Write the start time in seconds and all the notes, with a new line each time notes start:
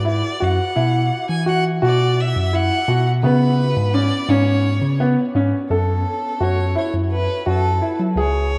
Already playing: G#2
0.05 E4 D5
0.40 F#2 F#4 F#5
0.76 B2 E4
1.29 E3 G#5
1.46 F#4 F#5
1.82 B2 F#4 D5
2.20 E5
2.37 F#2
2.53 E4 F#5
2.88 B2 F#4
3.23 C#3 B3 B4
3.77 G#2
3.94 C#4 D5
4.29 G#2 C#4 C#5
4.82 C#3
5.00 B3
5.35 G#2 C#4
5.70 F#2 A4
6.40 F#2 F#4 C#5
6.75 E4 C#5
6.94 F#2
7.12 B4
7.46 F#2 F#4 A4
7.82 E4
8.00 F#3
8.16 C#2 G#4 C#5